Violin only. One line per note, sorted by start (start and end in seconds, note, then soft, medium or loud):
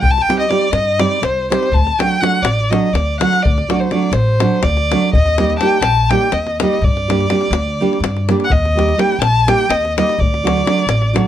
0.02 0.13 G5 medium
0.11 0.23 A5 medium
0.22 0.39 G5 loud
0.39 0.51 D#5 medium
0.49 0.73 D5 medium
0.71 1.01 D#5 medium
1.00 1.26 D5 medium
1.25 1.51 C5 medium
1.51 1.75 C5 medium
1.74 2.01 A5 medium
1.99 2.22 G5 medium
2.21 2.44 F#5 medium
2.43 2.72 D5 medium
2.70 2.86 D#5 medium
2.86 2.94 D#5 medium
2.93 3.20 D5 medium
3.21 3.44 F#5 medium
3.43 3.82 D5 medium
3.80 3.93 C5 medium
3.92 4.15 D5 medium
4.13 4.65 C5 medium
4.64 5.13 D5 medium
5.14 5.53 D#5 medium
5.56 5.81 G5 medium
5.56 5.61 A5 medium
5.81 6.11 A5 loud
6.09 6.34 G5 medium
6.32 6.61 D#5 medium
6.61 6.86 D#5 medium
6.84 8.30 D5 medium
8.45 8.53 F#5 medium
8.52 9.01 D#5 medium
8.99 9.21 G5 medium
9.22 9.50 A5 medium
9.49 9.71 G5 loud
9.70 9.98 D#5 medium
9.98 10.13 D#5 medium
10.13 10.21 D#5 medium
10.20 11.28 D5 medium